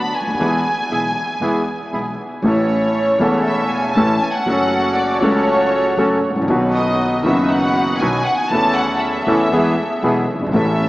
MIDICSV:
0, 0, Header, 1, 5, 480
1, 0, Start_track
1, 0, Key_signature, 3, "major"
1, 0, Tempo, 506757
1, 376, Time_signature, 4, 2, 24, 8
1, 10313, End_track
2, 0, Start_track
2, 0, Title_t, "Violin section"
2, 0, Program_c, 0, 48
2, 0, Note_on_c, 0, 83, 92
2, 141, Note_off_c, 0, 83, 0
2, 149, Note_on_c, 0, 80, 98
2, 2071, Note_off_c, 0, 80, 0
2, 2312, Note_on_c, 0, 73, 85
2, 3233, Note_off_c, 0, 73, 0
2, 3270, Note_on_c, 0, 76, 85
2, 3506, Note_on_c, 0, 80, 89
2, 3509, Note_off_c, 0, 76, 0
2, 3746, Note_on_c, 0, 81, 100
2, 3747, Note_off_c, 0, 80, 0
2, 3987, Note_off_c, 0, 81, 0
2, 3989, Note_on_c, 0, 80, 90
2, 4108, Note_off_c, 0, 80, 0
2, 4110, Note_on_c, 0, 78, 96
2, 4698, Note_on_c, 0, 74, 91
2, 4708, Note_off_c, 0, 78, 0
2, 4937, Note_on_c, 0, 73, 91
2, 4941, Note_off_c, 0, 74, 0
2, 5898, Note_off_c, 0, 73, 0
2, 6388, Note_on_c, 0, 75, 87
2, 6830, Note_off_c, 0, 75, 0
2, 6875, Note_on_c, 0, 76, 83
2, 7105, Note_on_c, 0, 78, 96
2, 7108, Note_off_c, 0, 76, 0
2, 7575, Note_on_c, 0, 80, 100
2, 7581, Note_off_c, 0, 78, 0
2, 7816, Note_off_c, 0, 80, 0
2, 7818, Note_on_c, 0, 78, 98
2, 7932, Note_on_c, 0, 80, 103
2, 7938, Note_off_c, 0, 78, 0
2, 8048, Note_on_c, 0, 81, 116
2, 8054, Note_off_c, 0, 80, 0
2, 8292, Note_off_c, 0, 81, 0
2, 8293, Note_on_c, 0, 78, 97
2, 8534, Note_on_c, 0, 76, 85
2, 8535, Note_off_c, 0, 78, 0
2, 9737, Note_off_c, 0, 76, 0
2, 9979, Note_on_c, 0, 76, 93
2, 10313, Note_off_c, 0, 76, 0
2, 10313, End_track
3, 0, Start_track
3, 0, Title_t, "Bandoneon"
3, 0, Program_c, 1, 23
3, 0, Note_on_c, 1, 59, 53
3, 0, Note_on_c, 1, 62, 43
3, 0, Note_on_c, 1, 66, 58
3, 99, Note_off_c, 1, 59, 0
3, 100, Note_off_c, 1, 62, 0
3, 101, Note_off_c, 1, 66, 0
3, 378, Note_on_c, 1, 59, 72
3, 381, Note_on_c, 1, 64, 70
3, 382, Note_on_c, 1, 68, 82
3, 579, Note_off_c, 1, 59, 0
3, 580, Note_off_c, 1, 64, 0
3, 581, Note_off_c, 1, 68, 0
3, 859, Note_on_c, 1, 59, 52
3, 861, Note_on_c, 1, 64, 48
3, 861, Note_on_c, 1, 68, 55
3, 1059, Note_off_c, 1, 59, 0
3, 1060, Note_off_c, 1, 64, 0
3, 1061, Note_off_c, 1, 68, 0
3, 1343, Note_on_c, 1, 59, 78
3, 1346, Note_on_c, 1, 64, 67
3, 1348, Note_on_c, 1, 68, 87
3, 1544, Note_off_c, 1, 59, 0
3, 1545, Note_off_c, 1, 64, 0
3, 1546, Note_off_c, 1, 68, 0
3, 1824, Note_on_c, 1, 59, 41
3, 1828, Note_on_c, 1, 64, 40
3, 1832, Note_on_c, 1, 68, 53
3, 2027, Note_off_c, 1, 59, 0
3, 2028, Note_off_c, 1, 64, 0
3, 2031, Note_off_c, 1, 68, 0
3, 2310, Note_on_c, 1, 61, 79
3, 2312, Note_on_c, 1, 64, 73
3, 2313, Note_on_c, 1, 69, 88
3, 2994, Note_off_c, 1, 61, 0
3, 2995, Note_off_c, 1, 64, 0
3, 2995, Note_off_c, 1, 69, 0
3, 3031, Note_on_c, 1, 61, 87
3, 3032, Note_on_c, 1, 64, 73
3, 3034, Note_on_c, 1, 69, 97
3, 3714, Note_off_c, 1, 61, 0
3, 3715, Note_off_c, 1, 64, 0
3, 3715, Note_off_c, 1, 69, 0
3, 3750, Note_on_c, 1, 61, 74
3, 3756, Note_on_c, 1, 64, 73
3, 3758, Note_on_c, 1, 69, 82
3, 3951, Note_off_c, 1, 61, 0
3, 3954, Note_off_c, 1, 64, 0
3, 3954, Note_off_c, 1, 69, 0
3, 4224, Note_on_c, 1, 61, 85
3, 4229, Note_on_c, 1, 66, 80
3, 4230, Note_on_c, 1, 69, 96
3, 4908, Note_off_c, 1, 61, 0
3, 4911, Note_off_c, 1, 66, 0
3, 4911, Note_off_c, 1, 69, 0
3, 4950, Note_on_c, 1, 61, 91
3, 4950, Note_on_c, 1, 66, 88
3, 4953, Note_on_c, 1, 69, 101
3, 5629, Note_off_c, 1, 66, 0
3, 5630, Note_off_c, 1, 61, 0
3, 5631, Note_off_c, 1, 69, 0
3, 5669, Note_on_c, 1, 61, 86
3, 5671, Note_on_c, 1, 66, 75
3, 5676, Note_on_c, 1, 69, 86
3, 5867, Note_off_c, 1, 61, 0
3, 5868, Note_off_c, 1, 66, 0
3, 5870, Note_off_c, 1, 69, 0
3, 6151, Note_on_c, 1, 63, 89
3, 6153, Note_on_c, 1, 71, 91
3, 6154, Note_on_c, 1, 66, 80
3, 6829, Note_off_c, 1, 63, 0
3, 6830, Note_off_c, 1, 66, 0
3, 6830, Note_off_c, 1, 71, 0
3, 6864, Note_on_c, 1, 63, 88
3, 6866, Note_on_c, 1, 71, 101
3, 6867, Note_on_c, 1, 66, 82
3, 7545, Note_off_c, 1, 63, 0
3, 7546, Note_off_c, 1, 71, 0
3, 7547, Note_off_c, 1, 66, 0
3, 7584, Note_on_c, 1, 63, 80
3, 7589, Note_on_c, 1, 66, 74
3, 7589, Note_on_c, 1, 71, 86
3, 7782, Note_off_c, 1, 63, 0
3, 7785, Note_off_c, 1, 66, 0
3, 7785, Note_off_c, 1, 71, 0
3, 8061, Note_on_c, 1, 61, 89
3, 8062, Note_on_c, 1, 64, 72
3, 8063, Note_on_c, 1, 69, 98
3, 8743, Note_off_c, 1, 61, 0
3, 8743, Note_off_c, 1, 64, 0
3, 8743, Note_off_c, 1, 69, 0
3, 8783, Note_on_c, 1, 61, 89
3, 8786, Note_on_c, 1, 64, 79
3, 8787, Note_on_c, 1, 69, 101
3, 8982, Note_off_c, 1, 61, 0
3, 8983, Note_off_c, 1, 64, 0
3, 8984, Note_off_c, 1, 69, 0
3, 9028, Note_on_c, 1, 64, 80
3, 9029, Note_on_c, 1, 59, 94
3, 9031, Note_on_c, 1, 68, 104
3, 9225, Note_off_c, 1, 59, 0
3, 9225, Note_off_c, 1, 64, 0
3, 9226, Note_off_c, 1, 68, 0
3, 9505, Note_on_c, 1, 59, 81
3, 9506, Note_on_c, 1, 64, 68
3, 9509, Note_on_c, 1, 68, 87
3, 9703, Note_off_c, 1, 59, 0
3, 9703, Note_off_c, 1, 64, 0
3, 9705, Note_off_c, 1, 68, 0
3, 9983, Note_on_c, 1, 61, 86
3, 9985, Note_on_c, 1, 64, 74
3, 9986, Note_on_c, 1, 69, 83
3, 10313, Note_off_c, 1, 61, 0
3, 10313, Note_off_c, 1, 64, 0
3, 10313, Note_off_c, 1, 69, 0
3, 10313, End_track
4, 0, Start_track
4, 0, Title_t, "Grand piano"
4, 0, Program_c, 2, 0
4, 0, Note_on_c, 2, 38, 52
4, 0, Note_on_c, 2, 50, 51
4, 0, Note_on_c, 2, 54, 37
4, 0, Note_on_c, 2, 59, 37
4, 0, Note_on_c, 2, 66, 47
4, 96, Note_off_c, 2, 54, 0
4, 97, Note_off_c, 2, 38, 0
4, 97, Note_off_c, 2, 50, 0
4, 97, Note_off_c, 2, 59, 0
4, 97, Note_off_c, 2, 66, 0
4, 202, Note_on_c, 2, 37, 42
4, 256, Note_on_c, 2, 38, 59
4, 259, Note_off_c, 2, 37, 0
4, 316, Note_off_c, 2, 38, 0
4, 324, Note_on_c, 2, 39, 66
4, 378, Note_on_c, 2, 52, 77
4, 380, Note_off_c, 2, 39, 0
4, 380, Note_on_c, 2, 59, 61
4, 381, Note_on_c, 2, 40, 78
4, 382, Note_on_c, 2, 56, 60
4, 383, Note_on_c, 2, 68, 72
4, 579, Note_off_c, 2, 52, 0
4, 580, Note_off_c, 2, 40, 0
4, 580, Note_off_c, 2, 59, 0
4, 581, Note_off_c, 2, 56, 0
4, 581, Note_off_c, 2, 68, 0
4, 863, Note_on_c, 2, 52, 42
4, 867, Note_on_c, 2, 56, 36
4, 870, Note_on_c, 2, 35, 54
4, 870, Note_on_c, 2, 47, 51
4, 870, Note_on_c, 2, 68, 47
4, 871, Note_on_c, 2, 59, 39
4, 1061, Note_off_c, 2, 52, 0
4, 1064, Note_off_c, 2, 56, 0
4, 1065, Note_off_c, 2, 35, 0
4, 1065, Note_off_c, 2, 47, 0
4, 1065, Note_off_c, 2, 59, 0
4, 1065, Note_off_c, 2, 68, 0
4, 1338, Note_on_c, 2, 52, 73
4, 1339, Note_on_c, 2, 56, 57
4, 1340, Note_on_c, 2, 59, 58
4, 1342, Note_on_c, 2, 40, 78
4, 1345, Note_on_c, 2, 68, 66
4, 1541, Note_off_c, 2, 56, 0
4, 1542, Note_off_c, 2, 59, 0
4, 1543, Note_off_c, 2, 40, 0
4, 1544, Note_off_c, 2, 52, 0
4, 1545, Note_off_c, 2, 68, 0
4, 1830, Note_on_c, 2, 56, 37
4, 1832, Note_on_c, 2, 35, 49
4, 1833, Note_on_c, 2, 47, 51
4, 1833, Note_on_c, 2, 52, 37
4, 1834, Note_on_c, 2, 68, 46
4, 1837, Note_on_c, 2, 59, 37
4, 2029, Note_off_c, 2, 56, 0
4, 2031, Note_off_c, 2, 35, 0
4, 2031, Note_off_c, 2, 47, 0
4, 2031, Note_off_c, 2, 52, 0
4, 2032, Note_off_c, 2, 68, 0
4, 2033, Note_off_c, 2, 59, 0
4, 2298, Note_on_c, 2, 52, 67
4, 2308, Note_on_c, 2, 57, 68
4, 2314, Note_on_c, 2, 33, 82
4, 2314, Note_on_c, 2, 45, 78
4, 2319, Note_on_c, 2, 61, 58
4, 2333, Note_on_c, 2, 69, 73
4, 2988, Note_off_c, 2, 52, 0
4, 2993, Note_off_c, 2, 57, 0
4, 2996, Note_off_c, 2, 33, 0
4, 2996, Note_off_c, 2, 45, 0
4, 2998, Note_off_c, 2, 61, 0
4, 3005, Note_off_c, 2, 69, 0
4, 3016, Note_on_c, 2, 52, 77
4, 3030, Note_on_c, 2, 57, 65
4, 3035, Note_on_c, 2, 28, 83
4, 3037, Note_on_c, 2, 40, 88
4, 3045, Note_on_c, 2, 61, 68
4, 3051, Note_on_c, 2, 69, 93
4, 3706, Note_off_c, 2, 52, 0
4, 3713, Note_off_c, 2, 57, 0
4, 3716, Note_off_c, 2, 28, 0
4, 3717, Note_off_c, 2, 40, 0
4, 3721, Note_off_c, 2, 61, 0
4, 3724, Note_off_c, 2, 69, 0
4, 3753, Note_on_c, 2, 52, 74
4, 3757, Note_on_c, 2, 57, 60
4, 3757, Note_on_c, 2, 61, 64
4, 3759, Note_on_c, 2, 33, 82
4, 3759, Note_on_c, 2, 45, 84
4, 3763, Note_on_c, 2, 69, 81
4, 3952, Note_off_c, 2, 52, 0
4, 3954, Note_off_c, 2, 57, 0
4, 3954, Note_off_c, 2, 61, 0
4, 3955, Note_off_c, 2, 33, 0
4, 3955, Note_off_c, 2, 45, 0
4, 3957, Note_off_c, 2, 69, 0
4, 4224, Note_on_c, 2, 54, 70
4, 4239, Note_off_c, 2, 54, 0
4, 4240, Note_on_c, 2, 57, 72
4, 4244, Note_on_c, 2, 54, 81
4, 4245, Note_on_c, 2, 42, 86
4, 4253, Note_on_c, 2, 61, 67
4, 4267, Note_on_c, 2, 69, 81
4, 4916, Note_off_c, 2, 57, 0
4, 4918, Note_off_c, 2, 54, 0
4, 4919, Note_off_c, 2, 42, 0
4, 4923, Note_off_c, 2, 61, 0
4, 4929, Note_off_c, 2, 69, 0
4, 4933, Note_on_c, 2, 54, 82
4, 4944, Note_on_c, 2, 57, 74
4, 4948, Note_on_c, 2, 37, 91
4, 4948, Note_on_c, 2, 49, 97
4, 4958, Note_on_c, 2, 61, 79
4, 4965, Note_on_c, 2, 69, 94
4, 5621, Note_off_c, 2, 54, 0
4, 5626, Note_off_c, 2, 57, 0
4, 5628, Note_off_c, 2, 49, 0
4, 5629, Note_off_c, 2, 37, 0
4, 5634, Note_off_c, 2, 61, 0
4, 5637, Note_off_c, 2, 69, 0
4, 5666, Note_on_c, 2, 42, 83
4, 5666, Note_on_c, 2, 57, 74
4, 5667, Note_on_c, 2, 54, 82
4, 5667, Note_on_c, 2, 69, 79
4, 5668, Note_on_c, 2, 61, 65
4, 5866, Note_off_c, 2, 42, 0
4, 5866, Note_off_c, 2, 57, 0
4, 5866, Note_off_c, 2, 61, 0
4, 5866, Note_off_c, 2, 69, 0
4, 5867, Note_off_c, 2, 54, 0
4, 5973, Note_on_c, 2, 32, 51
4, 6019, Note_on_c, 2, 33, 67
4, 6027, Note_off_c, 2, 32, 0
4, 6080, Note_off_c, 2, 33, 0
4, 6085, Note_on_c, 2, 34, 80
4, 6131, Note_on_c, 2, 51, 70
4, 6143, Note_off_c, 2, 34, 0
4, 6150, Note_on_c, 2, 54, 74
4, 6154, Note_on_c, 2, 47, 85
4, 6155, Note_on_c, 2, 35, 90
4, 6158, Note_on_c, 2, 59, 71
4, 6175, Note_on_c, 2, 66, 77
4, 6819, Note_off_c, 2, 51, 0
4, 6828, Note_off_c, 2, 54, 0
4, 6830, Note_off_c, 2, 47, 0
4, 6831, Note_off_c, 2, 35, 0
4, 6832, Note_off_c, 2, 59, 0
4, 6841, Note_off_c, 2, 66, 0
4, 6851, Note_on_c, 2, 51, 83
4, 6865, Note_on_c, 2, 54, 70
4, 6873, Note_on_c, 2, 30, 93
4, 6874, Note_on_c, 2, 42, 88
4, 6877, Note_on_c, 2, 59, 73
4, 6891, Note_on_c, 2, 66, 86
4, 7538, Note_off_c, 2, 51, 0
4, 7546, Note_off_c, 2, 54, 0
4, 7549, Note_off_c, 2, 30, 0
4, 7550, Note_off_c, 2, 42, 0
4, 7552, Note_off_c, 2, 59, 0
4, 7559, Note_off_c, 2, 66, 0
4, 7590, Note_on_c, 2, 51, 75
4, 7592, Note_on_c, 2, 54, 59
4, 7595, Note_on_c, 2, 35, 84
4, 7595, Note_on_c, 2, 47, 84
4, 7595, Note_on_c, 2, 59, 65
4, 7597, Note_on_c, 2, 66, 77
4, 7785, Note_off_c, 2, 51, 0
4, 7786, Note_off_c, 2, 54, 0
4, 7788, Note_off_c, 2, 35, 0
4, 7788, Note_off_c, 2, 47, 0
4, 7788, Note_off_c, 2, 59, 0
4, 7789, Note_off_c, 2, 66, 0
4, 8062, Note_on_c, 2, 52, 83
4, 8073, Note_on_c, 2, 57, 61
4, 8079, Note_on_c, 2, 40, 81
4, 8082, Note_on_c, 2, 61, 70
4, 8099, Note_on_c, 2, 69, 81
4, 8749, Note_off_c, 2, 57, 0
4, 8752, Note_off_c, 2, 40, 0
4, 8752, Note_off_c, 2, 52, 0
4, 8753, Note_off_c, 2, 61, 0
4, 8761, Note_off_c, 2, 69, 0
4, 8777, Note_on_c, 2, 52, 89
4, 8783, Note_on_c, 2, 57, 64
4, 8785, Note_on_c, 2, 61, 70
4, 8787, Note_on_c, 2, 40, 91
4, 8791, Note_on_c, 2, 69, 84
4, 8981, Note_off_c, 2, 52, 0
4, 8982, Note_off_c, 2, 57, 0
4, 8983, Note_off_c, 2, 61, 0
4, 8984, Note_off_c, 2, 40, 0
4, 8986, Note_off_c, 2, 69, 0
4, 9023, Note_on_c, 2, 59, 67
4, 9024, Note_on_c, 2, 40, 83
4, 9024, Note_on_c, 2, 52, 89
4, 9024, Note_on_c, 2, 56, 71
4, 9026, Note_on_c, 2, 68, 85
4, 9222, Note_off_c, 2, 59, 0
4, 9223, Note_off_c, 2, 40, 0
4, 9223, Note_off_c, 2, 56, 0
4, 9223, Note_off_c, 2, 68, 0
4, 9224, Note_off_c, 2, 52, 0
4, 9504, Note_on_c, 2, 52, 66
4, 9505, Note_on_c, 2, 47, 78
4, 9505, Note_on_c, 2, 59, 63
4, 9506, Note_on_c, 2, 56, 62
4, 9507, Note_on_c, 2, 35, 84
4, 9507, Note_on_c, 2, 68, 85
4, 9703, Note_off_c, 2, 47, 0
4, 9703, Note_off_c, 2, 52, 0
4, 9703, Note_off_c, 2, 56, 0
4, 9703, Note_off_c, 2, 59, 0
4, 9704, Note_off_c, 2, 35, 0
4, 9704, Note_off_c, 2, 68, 0
4, 9806, Note_on_c, 2, 30, 53
4, 9862, Note_off_c, 2, 30, 0
4, 9868, Note_on_c, 2, 31, 62
4, 9923, Note_off_c, 2, 31, 0
4, 9932, Note_on_c, 2, 32, 74
4, 9965, Note_on_c, 2, 52, 69
4, 9981, Note_on_c, 2, 57, 57
4, 9984, Note_on_c, 2, 33, 88
4, 9985, Note_off_c, 2, 32, 0
4, 9985, Note_on_c, 2, 45, 83
4, 9993, Note_on_c, 2, 61, 62
4, 10004, Note_on_c, 2, 69, 82
4, 10313, Note_off_c, 2, 33, 0
4, 10313, Note_off_c, 2, 45, 0
4, 10313, Note_off_c, 2, 52, 0
4, 10313, Note_off_c, 2, 57, 0
4, 10313, Note_off_c, 2, 61, 0
4, 10313, Note_off_c, 2, 69, 0
4, 10313, End_track
5, 0, Start_track
5, 0, Title_t, "Upright bass"
5, 0, Program_c, 3, 32
5, 195, Note_on_c, 3, 37, 45
5, 252, Note_off_c, 3, 37, 0
5, 258, Note_on_c, 3, 38, 69
5, 311, Note_off_c, 3, 38, 0
5, 317, Note_on_c, 3, 39, 78
5, 370, Note_off_c, 3, 39, 0
5, 376, Note_on_c, 3, 40, 80
5, 578, Note_off_c, 3, 40, 0
5, 851, Note_on_c, 3, 35, 58
5, 1056, Note_off_c, 3, 35, 0
5, 1326, Note_on_c, 3, 40, 80
5, 1535, Note_off_c, 3, 40, 0
5, 1823, Note_on_c, 3, 35, 59
5, 2026, Note_off_c, 3, 35, 0
5, 2297, Note_on_c, 3, 33, 87
5, 2987, Note_off_c, 3, 33, 0
5, 3019, Note_on_c, 3, 28, 90
5, 3708, Note_off_c, 3, 28, 0
5, 3741, Note_on_c, 3, 33, 97
5, 3946, Note_off_c, 3, 33, 0
5, 4226, Note_on_c, 3, 30, 91
5, 4909, Note_off_c, 3, 30, 0
5, 4944, Note_on_c, 3, 37, 89
5, 5627, Note_off_c, 3, 37, 0
5, 5658, Note_on_c, 3, 30, 96
5, 5862, Note_off_c, 3, 30, 0
5, 5960, Note_on_c, 3, 32, 53
5, 6017, Note_off_c, 3, 32, 0
5, 6023, Note_on_c, 3, 33, 72
5, 6074, Note_off_c, 3, 33, 0
5, 6080, Note_on_c, 3, 34, 91
5, 6131, Note_off_c, 3, 34, 0
5, 6137, Note_on_c, 3, 35, 101
5, 6822, Note_off_c, 3, 35, 0
5, 6858, Note_on_c, 3, 30, 86
5, 7542, Note_off_c, 3, 30, 0
5, 7578, Note_on_c, 3, 35, 103
5, 7780, Note_off_c, 3, 35, 0
5, 8055, Note_on_c, 3, 40, 86
5, 8739, Note_off_c, 3, 40, 0
5, 8777, Note_on_c, 3, 40, 93
5, 8979, Note_off_c, 3, 40, 0
5, 9014, Note_on_c, 3, 40, 100
5, 9218, Note_off_c, 3, 40, 0
5, 9497, Note_on_c, 3, 35, 92
5, 9699, Note_off_c, 3, 35, 0
5, 9794, Note_on_c, 3, 30, 55
5, 9842, Note_off_c, 3, 30, 0
5, 9847, Note_on_c, 3, 31, 71
5, 9907, Note_off_c, 3, 31, 0
5, 9912, Note_on_c, 3, 32, 90
5, 9969, Note_off_c, 3, 32, 0
5, 9975, Note_on_c, 3, 33, 101
5, 10313, Note_off_c, 3, 33, 0
5, 10313, End_track
0, 0, End_of_file